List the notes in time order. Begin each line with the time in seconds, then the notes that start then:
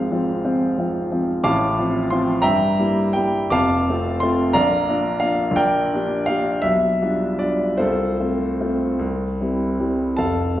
Already playing: G#1 G#2 F3 C4 F4 G#4 C5 F5
0.12 F3 C4 F4
0.45 F3 C4 F4
0.78 F3 C4 F4
1.12 F3 C4 F4
1.44 A1 A2 F5 A5 D6
1.79 F3 C4 F4
2.10 F3 C4 F4 C6
2.42 G2 E5 G5 A#5
2.79 G3 A#3 E4
3.13 G3 A#3 E4 G5
3.50 F1 F2 F5 A5 D6
3.89 A3 C4 F4
4.20 A3 C4 F4 C6
4.53 A#1 D5 F5 A#5
4.88 A#3 D4 F4
5.20 A#3 D4 F4 F5
5.51 A#1
5.56 A#4 D5 G5
5.94 A#3 D4 G4
6.26 A#3 D4 G4 F5
6.62 B1 E5
7.01 G3 D4 F4
7.39 G3 D4 F4 D5
7.77 C2 F4 A4 C5
8.20 A3 C4 F4
8.61 A3 C4 F4
8.99 C2
9.41 G3 C4 E4
9.79 G3 C4 E4
10.17 F1 F2 A4 F5 A5
10.57 A3